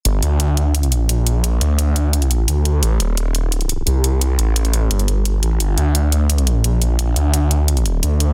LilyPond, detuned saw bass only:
\new Staff \with { instrumentName = "Detuned saw bass" } { \clef bass \time 4/4 \key g \minor \tempo 4 = 173 g,,8 d,2~ d,8 bes,,4~ | bes,,8 d,2~ d,8 d,4 | a,,8 ees,,2~ ees,,8 c,4~ | c,8 a,,4. g,,4. a,,8 |
g,,8 d,2~ d,8 bes,,4~ | bes,,8 d,2~ d,8 d,4 | }